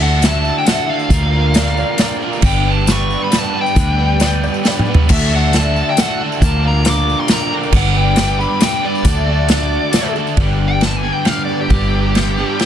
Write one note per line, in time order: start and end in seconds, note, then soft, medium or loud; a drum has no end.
0.00 0.50 D2 loud
0.00 0.21 D3 loud
0.00 0.23 D3 medium
0.00 0.19 E3 medium
0.00 0.20 A3 medium
0.00 0.23 D4 medium
0.00 0.20 E4 medium
0.00 0.21 F#4 medium
0.00 0.23 F#4 medium
0.00 0.23 A4 medium
0.00 1.09 D5 medium
0.00 1.10 F#5 medium
0.00 0.24 F#5 loud
0.00 1.09 E6 medium
0.20 0.64 D3 medium
0.20 0.43 E3 medium
0.20 0.44 A3 medium
0.20 0.66 D4 medium
0.20 0.43 E4 medium
0.20 0.41 F#4 medium
0.20 snare medium
0.20 closed hi-hat medium
0.20 tambourine medium
0.24 0.66 F#4 medium
0.24 0.67 A4 medium
0.24 0.55 A5 loud
0.42 0.66 A3 soft
0.42 0.66 E4 soft
0.42 0.65 F#4 soft
0.42 tambourine soft
0.58 0.66 G5 medium
0.65 1.09 D3 loud
0.65 1.10 E3 medium
0.65 1.10 A3 medium
0.65 0.90 D4 loud
0.65 1.11 E4 medium
0.65 0.87 F#4 loud
0.65 1.11 F#4 medium
0.65 0.85 A4 loud
0.65 0.89 F#5 loud
0.65 snare medium
0.65 closed hi-hat medium
0.65 tambourine loud
0.87 1.11 D4 medium
0.87 1.09 F#4 medium
0.87 1.08 A4 medium
0.87 2.18 F5 medium
0.99 tambourine soft
1.10 1.83 D2 loud
1.10 1.54 D3 medium
1.10 1.53 D3 medium
1.10 1.53 F3 medium
1.10 1.54 A#3 medium
1.10 1.35 D4 loud
1.10 1.32 F4 loud
1.10 1.55 F4 medium
1.10 1.57 G4 medium
1.10 2.42 A#4 medium
1.10 5.05 D5 loud
1.10 5.05 G5 medium
1.10 kick loud
1.10 closed hi-hat medium
1.10 tambourine loud
1.14 1.31 A#4 loud
1.32 1.56 D4 medium
1.32 1.55 F4 medium
1.32 1.56 A#4 medium
1.51 1.96 D3 medium
1.51 1.77 F3 medium
1.51 1.77 A#3 medium
1.51 1.54 E5 medium
1.51 closed hi-hat medium
1.51 tambourine loud
1.56 1.99 D4 medium
1.56 1.76 F4 medium
1.56 1.99 F4 medium
1.56 1.75 G4 medium
1.56 2.00 A#4 medium
1.56 1.76 D5 medium
1.56 1.77 F5 medium
1.56 snare medium
1.76 1.98 A#3 soft
1.76 1.99 F4 medium
1.76 1.99 G4 medium
1.76 1.98 D5 medium
1.76 1.99 F5 medium
1.76 tambourine soft
1.97 2.41 D3 medium
1.97 2.21 F3 medium
1.97 2.21 A#3 medium
1.97 2.25 D4 loud
1.97 2.20 F4 medium
1.97 2.22 F4 loud
1.97 2.18 G4 medium
1.97 2.21 A#4 loud
1.97 2.32 D5 loud
1.97 snare medium
1.97 closed hi-hat medium
1.97 tambourine loud
2.19 2.43 A#3 medium
2.19 2.43 F4 medium
2.19 2.42 G4 medium
2.19 2.43 A#4 medium
2.24 2.43 D4 medium
2.24 2.43 F4 medium
2.33 tambourine soft
2.41 3.15 G1 loud
2.41 2.87 G2 medium
2.41 2.87 D3 medium
2.41 2.86 G3 loud
2.41 2.85 G3 medium
2.41 2.87 B3 medium
2.41 2.65 B3 loud
2.41 2.67 D4 loud
2.41 2.88 D4 medium
2.41 2.88 G4 medium
2.41 5.07 B4 medium
2.41 2.63 B4 loud
2.41 2.67 G5 medium
2.41 kick loud
2.41 tambourine loud
2.41 crash loud
2.63 2.88 B3 medium
2.63 2.87 D4 medium
2.63 2.89 B4 medium
2.71 2.91 A5 medium
2.86 3.09 G3 medium
2.86 3.29 G3 medium
2.86 3.10 B3 medium
2.86 3.31 B3 medium
2.86 3.31 D4 medium
2.86 3.09 D4 medium
2.86 3.08 G4 medium
2.86 3.33 B4 medium
2.86 snare loud
2.86 closed hi-hat medium
2.86 tambourine loud
2.91 3.21 C#6 loud
3.09 3.30 G3 soft
3.09 3.31 B3 soft
3.09 3.32 D4 soft
3.09 3.32 G4 soft
3.09 tambourine soft
3.24 3.34 B5 medium
3.31 3.74 G3 loud
3.31 3.76 G3 medium
3.31 3.54 B3 loud
3.31 3.76 B3 medium
3.31 3.57 D4 loud
3.31 3.76 D4 medium
3.31 3.53 B4 loud
3.31 snare medium
3.31 closed hi-hat medium
3.31 tambourine loud
3.35 3.77 G4 medium
3.35 3.58 A5 medium
3.54 3.77 B3 medium
3.54 3.76 D4 medium
3.54 3.78 B4 medium
3.61 4.86 G5 medium
3.66 tambourine soft
3.75 4.48 D2 loud
3.75 4.20 G2 medium
3.75 4.20 D3 medium
3.75 4.19 G3 medium
3.75 4.18 G3 medium
3.75 4.20 B3 medium
3.75 3.99 B3 medium
3.75 4.01 D4 medium
3.75 4.21 D4 medium
3.75 4.21 G4 loud
3.75 3.97 B4 loud
3.75 kick loud
3.75 closed hi-hat medium
3.75 tambourine loud
3.99 4.22 B3 medium
3.99 4.21 D4 medium
3.99 4.22 B4 medium
4.18 4.62 G3 medium
4.18 4.63 G3 medium
4.18 4.64 B3 medium
4.18 4.65 D4 medium
4.18 4.20 C#5 medium
4.18 4.42 D5 medium
4.18 snare medium
4.18 closed hi-hat medium
4.18 tambourine loud
4.23 4.65 B3 medium
4.23 4.66 G4 medium
4.23 4.66 B4 medium
4.43 4.65 D5 medium
4.43 tambourine soft
4.54 tambourine soft
4.63 4.86 G3 medium
4.63 5.07 G3 loud
4.63 4.86 B3 medium
4.63 4.87 B3 loud
4.63 4.91 D4 loud
4.63 4.85 D4 medium
4.63 4.84 G4 medium
4.63 4.86 B4 loud
4.63 snare medium
4.63 tambourine loud
4.68 4.99 D5 medium
4.77 mid tom medium
4.77 tambourine soft
4.85 5.09 G3 soft
4.85 5.09 B3 soft
4.85 5.08 B3 medium
4.85 5.09 D4 medium
4.85 5.08 G4 medium
4.85 5.08 B4 medium
4.91 5.09 D4 medium
4.91 floor tom loud
5.08 5.82 D2 loud
5.08 5.51 D3 medium
5.08 5.56 D3 medium
5.08 5.52 E3 medium
5.08 5.53 A3 medium
5.08 5.34 D4 medium
5.08 5.56 D4 loud
5.08 5.31 F#4 loud
5.08 5.54 F#4 loud
5.08 5.30 A4 loud
5.08 6.41 D5 medium
5.08 5.31 E5 medium
5.08 6.41 F#5 medium
5.08 6.41 E6 medium
5.08 kick loud
5.08 crash loud
5.08 tambourine loud
5.31 5.53 D4 medium
5.31 5.53 F#4 medium
5.31 5.54 A4 medium
5.35 5.56 F#5 medium
5.52 5.96 D3 medium
5.52 5.95 E3 medium
5.52 5.97 A3 medium
5.52 5.99 D4 medium
5.52 5.99 F#4 medium
5.52 5.99 A4 medium
5.52 snare medium
5.52 closed hi-hat medium
5.52 tambourine loud
5.56 5.98 D4 medium
5.56 5.99 F#4 medium
5.56 5.86 A5 loud
5.76 tambourine soft
5.90 6.00 G5 medium
5.97 6.39 D3 medium
5.97 6.41 E3 medium
5.97 6.42 A3 medium
5.97 6.42 D4 medium
5.97 6.23 D4 loud
5.97 6.21 F#4 loud
5.97 6.43 F#4 medium
5.97 6.19 A4 loud
5.97 6.21 F#5 medium
5.97 snare medium
5.97 closed hi-hat medium
5.97 tambourine medium
6.20 6.42 D4 medium
6.20 6.42 F#4 medium
6.20 6.40 A4 medium
6.32 tambourine soft
6.41 7.13 D2 loud
6.41 6.84 D3 medium
6.41 6.86 D3 medium
6.41 6.83 F3 medium
6.41 6.85 A#3 medium
6.41 6.66 D4 loud
6.41 6.86 F4 medium
6.41 6.63 F4 loud
6.41 6.87 G4 medium
6.41 7.73 A#4 medium
6.41 6.62 A#4 loud
6.41 9.05 G5 medium
6.41 6.63 A5 medium
6.41 10.36 D6 medium
6.41 kick loud
6.41 closed hi-hat medium
6.41 tambourine loud
6.63 6.87 D4 medium
6.63 6.86 F4 medium
6.63 6.87 A#4 medium
6.68 6.88 A#5 medium
6.85 7.28 D3 medium
6.85 7.07 F3 medium
6.85 7.08 A#3 medium
6.85 7.30 D4 medium
6.85 7.09 F4 medium
6.85 7.31 F4 medium
6.85 7.06 G4 medium
6.85 7.31 A#4 medium
6.85 snare loud
6.85 closed hi-hat medium
6.85 tambourine medium
6.89 7.20 D6 loud
7.08 7.29 A#3 soft
7.08 7.30 F4 soft
7.08 7.30 G4 soft
7.08 tambourine soft
7.20 7.33 C6 medium
7.28 7.72 D3 loud
7.28 7.73 F3 medium
7.28 7.74 A#3 medium
7.28 7.54 D4 loud
7.28 7.74 F4 medium
7.28 7.52 F4 loud
7.28 snare medium
7.28 closed hi-hat medium
7.28 tambourine medium
7.32 7.73 G4 medium
7.32 7.50 A#4 loud
7.32 7.53 A#5 medium
7.51 7.73 D4 medium
7.51 7.73 F4 medium
7.51 7.72 A#4 medium
7.63 tambourine soft
7.72 8.45 G1 loud
7.72 8.18 G2 medium
7.72 8.18 D3 medium
7.72 8.14 G3 loud
7.72 8.15 G3 medium
7.72 8.15 B3 medium
7.72 7.95 B3 loud
7.72 7.97 D4 loud
7.72 8.17 D4 loud
7.72 8.17 G4 loud
7.72 9.04 B4 medium
7.72 7.97 F#5 loud
7.72 kick loud
7.72 tambourine medium
7.72 crash loud
7.76 7.94 B4 loud
7.95 8.17 B3 medium
7.95 8.17 D4 medium
7.95 8.18 B4 medium
7.95 8.42 G5 medium
8.16 8.60 G3 medium
8.16 8.39 G3 medium
8.16 8.38 B3 medium
8.16 8.62 B3 medium
8.16 8.37 D4 medium
8.16 8.62 D4 medium
8.16 8.36 G4 medium
8.16 8.63 B4 medium
8.16 snare medium
8.16 closed hi-hat medium
8.16 tambourine medium
8.37 8.60 G3 soft
8.37 8.61 B3 soft
8.37 8.61 D4 soft
8.37 8.61 G4 medium
8.37 8.60 B5 loud
8.37 tambourine soft
8.61 9.04 G3 loud
8.61 8.84 G3 medium
8.61 8.84 B3 medium
8.61 8.83 B3 loud
8.61 8.85 D4 loud
8.61 8.83 D4 medium
8.61 8.82 G4 medium
8.61 8.82 B4 loud
8.61 8.85 G5 loud
8.61 snare medium
8.61 closed hi-hat medium
8.61 tambourine medium
8.83 9.05 G3 soft
8.83 9.05 B3 medium
8.83 9.06 B3 soft
8.83 9.06 D4 medium
8.83 9.06 G4 medium
8.83 9.04 B4 medium
8.83 10.13 D5 medium
8.95 tambourine soft
9.05 9.77 D2 loud
9.05 9.47 D3 medium
9.05 9.50 D3 medium
9.05 9.49 F#3 medium
9.05 9.51 A3 medium
9.05 9.29 D4 loud
9.05 9.51 D4 loud
9.05 9.27 F#4 loud
9.05 9.51 F#4 loud
9.05 10.38 A4 medium
9.05 10.38 F#5 medium
9.05 kick loud
9.05 closed hi-hat medium
9.05 tambourine loud
9.09 9.25 A4 loud
9.26 9.49 D4 medium
9.26 9.49 F#4 medium
9.26 9.50 A4 medium
9.48 9.91 D3 medium
9.48 9.72 F#3 medium
9.48 9.73 A3 medium
9.48 9.93 D4 medium
9.48 9.73 D4 medium
9.48 9.94 F#4 medium
9.48 9.95 A4 medium
9.48 snare medium
9.48 closed hi-hat medium
9.48 tambourine loud
9.54 9.71 F#4 medium
9.72 9.94 A3 soft
9.72 9.94 D4 soft
9.72 9.94 F#4 medium
9.92 10.36 D3 medium
9.92 10.16 F#3 medium
9.92 10.16 A3 medium
9.92 10.18 D4 loud
9.92 10.15 D4 medium
9.92 10.17 F#4 loud
9.92 10.14 F#4 medium
9.92 snare medium
9.92 closed hi-hat medium
9.92 tambourine loud
9.97 10.15 A4 loud
10.15 10.39 A3 soft
10.15 10.38 D4 medium
10.15 10.39 D4 medium
10.15 10.38 F#4 medium
10.15 10.37 A4 medium
10.15 tambourine soft
10.27 tambourine soft
10.37 11.10 G1 medium
10.37 10.83 G2 medium
10.37 11.06 G2 medium
10.37 10.83 D3 medium
10.37 11.04 D3 medium
10.37 11.05 G3 medium
10.37 10.81 G3 loud
10.37 10.83 B3 medium
10.37 11.04 B3 medium
10.37 10.85 D4 medium
10.37 11.03 D4 medium
10.37 10.84 G4 loud
10.37 12.66 B4 medium
10.37 12.66 G5 medium
10.37 12.66 D6 medium
10.37 kick loud
10.37 ride medium
10.41 11.02 G4 medium
10.68 10.82 G5 medium
10.81 11.05 G3 medium
10.81 11.05 B3 medium
10.81 11.04 D4 medium
10.81 10.96 A5 medium
10.81 snare medium
10.81 ride medium
10.85 11.04 G4 medium
10.96 11.12 G#5 medium
11.03 11.69 D3 medium
11.03 11.70 G3 medium
11.03 11.70 B3 medium
11.03 11.25 B3 soft
11.03 11.72 D4 medium
11.03 11.26 D4 soft
11.03 11.69 G4 medium
11.03 11.27 G4 soft
11.07 11.68 G2 medium
11.07 11.24 G3 soft
11.12 11.27 G5 medium
11.25 11.48 G3 medium
11.25 11.49 B3 medium
11.25 11.49 D4 medium
11.25 11.48 G4 medium
11.25 11.41 F5 medium
11.25 snare medium
11.25 ride medium
11.45 11.58 D5 medium
11.49 11.71 G3 soft
11.49 11.71 B3 soft
11.49 11.71 D4 soft
11.49 11.71 G4 medium
11.61 12.66 G4 medium
11.69 12.43 G1 loud
11.69 12.35 G2 medium
11.69 12.15 G2 medium
11.69 12.36 D3 medium
11.69 12.16 D3 medium
11.69 12.36 G3 medium
11.69 12.16 G3 medium
11.69 12.37 B3 medium
11.69 12.16 B3 medium
11.69 12.38 D4 loud
11.69 12.18 D4 medium
11.69 12.16 G4 medium
11.69 12.37 G4 medium
11.69 kick loud
11.69 ride medium
12.15 12.38 G3 medium
12.15 12.39 B3 medium
12.15 12.38 D4 medium
12.15 snare medium
12.15 ride medium
12.20 12.37 G4 medium
12.38 12.66 G2 medium
12.38 12.66 D3 medium
12.38 12.66 G3 medium
12.38 12.60 G3 soft
12.38 12.66 B3 medium
12.38 12.61 B3 soft
12.38 12.66 D4 medium
12.38 12.61 D4 soft
12.38 12.66 G4 medium
12.38 12.60 G4 medium
12.59 12.66 G3 medium
12.59 12.66 B3 medium
12.59 snare medium
12.59 ride medium